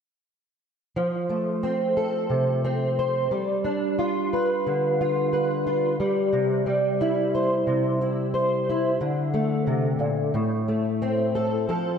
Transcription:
0, 0, Header, 1, 2, 480
1, 0, Start_track
1, 0, Key_signature, -1, "major"
1, 0, Tempo, 671141
1, 683, Time_signature, 4, 2, 24, 8
1, 8571, End_track
2, 0, Start_track
2, 0, Title_t, "Steel-string acoustic guitar"
2, 0, Program_c, 0, 25
2, 688, Note_on_c, 0, 53, 50
2, 925, Note_on_c, 0, 57, 46
2, 1167, Note_on_c, 0, 60, 35
2, 1408, Note_on_c, 0, 69, 38
2, 1642, Note_on_c, 0, 48, 46
2, 1884, Note_off_c, 0, 60, 0
2, 1891, Note_on_c, 0, 60, 41
2, 2124, Note_off_c, 0, 69, 0
2, 2138, Note_on_c, 0, 72, 47
2, 2332, Note_off_c, 0, 48, 0
2, 2333, Note_off_c, 0, 57, 0
2, 2334, Note_off_c, 0, 53, 0
2, 2340, Note_off_c, 0, 72, 0
2, 2365, Note_off_c, 0, 60, 0
2, 2368, Note_on_c, 0, 55, 48
2, 2606, Note_on_c, 0, 62, 49
2, 2851, Note_on_c, 0, 65, 48
2, 3098, Note_on_c, 0, 71, 39
2, 3336, Note_on_c, 0, 50, 43
2, 3565, Note_off_c, 0, 65, 0
2, 3582, Note_on_c, 0, 65, 42
2, 3802, Note_off_c, 0, 71, 0
2, 3811, Note_on_c, 0, 71, 43
2, 4044, Note_off_c, 0, 65, 0
2, 4052, Note_on_c, 0, 65, 44
2, 4253, Note_off_c, 0, 62, 0
2, 4256, Note_off_c, 0, 71, 0
2, 4257, Note_off_c, 0, 65, 0
2, 4282, Note_off_c, 0, 55, 0
2, 4287, Note_off_c, 0, 50, 0
2, 4290, Note_on_c, 0, 55, 52
2, 4524, Note_on_c, 0, 48, 59
2, 4756, Note_off_c, 0, 55, 0
2, 4764, Note_on_c, 0, 55, 52
2, 5013, Note_on_c, 0, 64, 46
2, 5254, Note_on_c, 0, 72, 41
2, 5475, Note_off_c, 0, 48, 0
2, 5484, Note_on_c, 0, 48, 45
2, 5722, Note_off_c, 0, 64, 0
2, 5730, Note_on_c, 0, 64, 40
2, 5956, Note_off_c, 0, 72, 0
2, 5964, Note_on_c, 0, 72, 45
2, 6204, Note_off_c, 0, 64, 0
2, 6218, Note_on_c, 0, 64, 40
2, 6413, Note_off_c, 0, 48, 0
2, 6413, Note_off_c, 0, 72, 0
2, 6420, Note_off_c, 0, 64, 0
2, 6441, Note_off_c, 0, 55, 0
2, 6441, Note_on_c, 0, 50, 55
2, 6678, Note_on_c, 0, 57, 55
2, 6914, Note_on_c, 0, 48, 47
2, 7141, Note_off_c, 0, 48, 0
2, 7144, Note_on_c, 0, 46, 46
2, 7370, Note_off_c, 0, 57, 0
2, 7392, Note_off_c, 0, 46, 0
2, 7395, Note_on_c, 0, 45, 59
2, 7400, Note_off_c, 0, 50, 0
2, 7639, Note_on_c, 0, 57, 46
2, 7881, Note_on_c, 0, 60, 47
2, 8118, Note_on_c, 0, 69, 49
2, 8331, Note_off_c, 0, 57, 0
2, 8350, Note_off_c, 0, 69, 0
2, 8358, Note_off_c, 0, 45, 0
2, 8358, Note_on_c, 0, 53, 51
2, 8360, Note_on_c, 0, 69, 47
2, 8571, Note_off_c, 0, 53, 0
2, 8571, Note_off_c, 0, 60, 0
2, 8571, Note_off_c, 0, 69, 0
2, 8571, End_track
0, 0, End_of_file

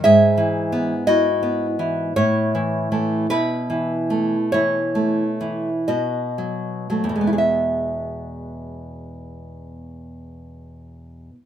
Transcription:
0, 0, Header, 1, 2, 480
1, 0, Start_track
1, 0, Key_signature, 4, "major"
1, 0, Tempo, 1032702
1, 20, Time_signature, 3, 2, 24, 8
1, 500, Tempo, 1092896
1, 980, Tempo, 1125704
1, 1460, Tempo, 1221996
1, 1940, Tempo, 1357466
1, 2420, Tempo, 1511335
1, 2900, Tempo, 1379310
1, 4317, End_track
2, 0, Start_track
2, 0, Title_t, "Nylon-string guitar"
2, 0, Program_c, 0, 24
2, 18, Note_on_c, 0, 76, 82
2, 21, Note_on_c, 0, 68, 66
2, 24, Note_on_c, 0, 44, 58
2, 174, Note_on_c, 0, 52, 43
2, 336, Note_on_c, 0, 59, 49
2, 433, Note_off_c, 0, 52, 0
2, 481, Note_off_c, 0, 76, 0
2, 482, Note_off_c, 0, 68, 0
2, 497, Note_on_c, 0, 75, 75
2, 499, Note_on_c, 0, 64, 45
2, 504, Note_on_c, 0, 66, 50
2, 595, Note_off_c, 0, 59, 0
2, 654, Note_on_c, 0, 59, 43
2, 754, Note_off_c, 0, 64, 0
2, 814, Note_on_c, 0, 52, 41
2, 913, Note_off_c, 0, 59, 0
2, 961, Note_off_c, 0, 75, 0
2, 964, Note_off_c, 0, 44, 0
2, 964, Note_off_c, 0, 66, 0
2, 976, Note_off_c, 0, 52, 0
2, 977, Note_on_c, 0, 45, 55
2, 977, Note_on_c, 0, 73, 73
2, 978, Note_on_c, 0, 64, 49
2, 1142, Note_on_c, 0, 52, 44
2, 1294, Note_off_c, 0, 52, 0
2, 1299, Note_on_c, 0, 52, 39
2, 1300, Note_on_c, 0, 57, 48
2, 1441, Note_off_c, 0, 73, 0
2, 1442, Note_off_c, 0, 64, 0
2, 1444, Note_off_c, 0, 45, 0
2, 1444, Note_off_c, 0, 57, 0
2, 1445, Note_off_c, 0, 52, 0
2, 1462, Note_on_c, 0, 71, 74
2, 1465, Note_on_c, 0, 47, 55
2, 1467, Note_on_c, 0, 64, 57
2, 1618, Note_on_c, 0, 52, 40
2, 1777, Note_on_c, 0, 57, 41
2, 1875, Note_off_c, 0, 52, 0
2, 1925, Note_off_c, 0, 71, 0
2, 1927, Note_off_c, 0, 64, 0
2, 1942, Note_on_c, 0, 73, 73
2, 1944, Note_on_c, 0, 52, 37
2, 1949, Note_on_c, 0, 64, 57
2, 2032, Note_off_c, 0, 57, 0
2, 2094, Note_on_c, 0, 57, 36
2, 2190, Note_off_c, 0, 52, 0
2, 2255, Note_on_c, 0, 52, 40
2, 2352, Note_off_c, 0, 57, 0
2, 2407, Note_off_c, 0, 73, 0
2, 2408, Note_off_c, 0, 47, 0
2, 2410, Note_off_c, 0, 64, 0
2, 2420, Note_off_c, 0, 52, 0
2, 2421, Note_on_c, 0, 75, 57
2, 2423, Note_on_c, 0, 47, 49
2, 2424, Note_on_c, 0, 66, 41
2, 2581, Note_on_c, 0, 54, 34
2, 2741, Note_off_c, 0, 54, 0
2, 2745, Note_on_c, 0, 54, 33
2, 2746, Note_on_c, 0, 57, 35
2, 2788, Note_off_c, 0, 47, 0
2, 2790, Note_on_c, 0, 40, 40
2, 2806, Note_off_c, 0, 54, 0
2, 2807, Note_on_c, 0, 47, 35
2, 2827, Note_on_c, 0, 56, 34
2, 2843, Note_off_c, 0, 66, 0
2, 2844, Note_on_c, 0, 59, 35
2, 2863, Note_off_c, 0, 75, 0
2, 2864, Note_on_c, 0, 64, 34
2, 2881, Note_off_c, 0, 64, 0
2, 2882, Note_on_c, 0, 68, 32
2, 2888, Note_off_c, 0, 57, 0
2, 2898, Note_off_c, 0, 68, 0
2, 2899, Note_on_c, 0, 76, 42
2, 4260, Note_off_c, 0, 40, 0
2, 4279, Note_off_c, 0, 47, 0
2, 4302, Note_off_c, 0, 56, 0
2, 4317, Note_off_c, 0, 59, 0
2, 4317, Note_off_c, 0, 76, 0
2, 4317, End_track
0, 0, End_of_file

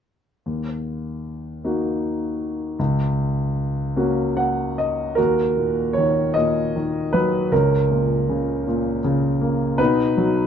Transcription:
0, 0, Header, 1, 2, 480
1, 0, Start_track
1, 0, Key_signature, -6, "minor"
1, 0, Tempo, 789474
1, 274, Time_signature, 6, 3, 24, 8
1, 1236, Tempo, 762389
1, 2196, Tempo, 803213
1, 3636, Tempo, 765306
1, 6459, End_track
2, 0, Start_track
2, 0, Title_t, "Grand piano"
2, 0, Program_c, 0, 0
2, 280, Note_on_c, 0, 39, 29
2, 373, Control_c, 0, 64, 127
2, 999, Note_on_c, 0, 58, 25
2, 1000, Note_on_c, 0, 63, 24
2, 1007, Note_on_c, 0, 66, 28
2, 1692, Note_off_c, 0, 39, 0
2, 1694, Note_off_c, 0, 58, 0
2, 1694, Note_off_c, 0, 63, 0
2, 1698, Note_off_c, 0, 66, 0
2, 1714, Note_on_c, 0, 37, 40
2, 1722, Control_c, 0, 64, 0
2, 1827, Control_c, 0, 64, 127
2, 2439, Note_on_c, 0, 58, 33
2, 2440, Note_on_c, 0, 61, 31
2, 2444, Note_on_c, 0, 66, 39
2, 2680, Note_on_c, 0, 78, 50
2, 2906, Note_off_c, 0, 78, 0
2, 2928, Note_on_c, 0, 75, 46
2, 3139, Note_off_c, 0, 37, 0
2, 3142, Note_off_c, 0, 58, 0
2, 3143, Note_off_c, 0, 61, 0
2, 3145, Note_off_c, 0, 66, 0
2, 3149, Note_off_c, 0, 75, 0
2, 3149, Note_on_c, 0, 70, 56
2, 3163, Note_on_c, 0, 66, 39
2, 3165, Note_on_c, 0, 39, 42
2, 3172, Control_c, 0, 64, 0
2, 3277, Control_c, 0, 64, 127
2, 3400, Note_on_c, 0, 46, 31
2, 3616, Note_on_c, 0, 73, 56
2, 3640, Note_on_c, 0, 51, 34
2, 3643, Note_off_c, 0, 70, 0
2, 3855, Note_off_c, 0, 66, 0
2, 3869, Note_on_c, 0, 75, 65
2, 3874, Note_off_c, 0, 46, 0
2, 3877, Note_off_c, 0, 73, 0
2, 3883, Note_on_c, 0, 46, 38
2, 4121, Note_off_c, 0, 51, 0
2, 4131, Note_on_c, 0, 51, 36
2, 4363, Note_on_c, 0, 71, 58
2, 4370, Note_on_c, 0, 54, 36
2, 4375, Note_off_c, 0, 75, 0
2, 4585, Note_off_c, 0, 39, 0
2, 4589, Note_off_c, 0, 46, 0
2, 4599, Note_off_c, 0, 51, 0
2, 4604, Note_off_c, 0, 54, 0
2, 4609, Note_on_c, 0, 37, 46
2, 4609, Note_on_c, 0, 70, 54
2, 4615, Note_off_c, 0, 71, 0
2, 4615, Note_on_c, 0, 61, 41
2, 4617, Control_c, 0, 64, 0
2, 4739, Control_c, 0, 64, 127
2, 4853, Note_on_c, 0, 46, 34
2, 5094, Note_on_c, 0, 49, 36
2, 5322, Note_off_c, 0, 46, 0
2, 5332, Note_on_c, 0, 46, 40
2, 5535, Note_off_c, 0, 70, 0
2, 5537, Note_off_c, 0, 61, 0
2, 5555, Note_off_c, 0, 49, 0
2, 5565, Note_on_c, 0, 49, 41
2, 5798, Note_on_c, 0, 58, 42
2, 6010, Note_off_c, 0, 37, 0
2, 6017, Note_off_c, 0, 46, 0
2, 6023, Note_off_c, 0, 49, 0
2, 6026, Note_on_c, 0, 47, 51
2, 6027, Note_on_c, 0, 71, 69
2, 6029, Note_off_c, 0, 58, 0
2, 6042, Note_on_c, 0, 63, 53
2, 6044, Control_c, 0, 64, 0
2, 6152, Control_c, 0, 64, 127
2, 6274, Note_on_c, 0, 54, 37
2, 6459, Note_off_c, 0, 47, 0
2, 6459, Note_off_c, 0, 54, 0
2, 6459, Note_off_c, 0, 63, 0
2, 6459, Note_off_c, 0, 71, 0
2, 6459, End_track
0, 0, End_of_file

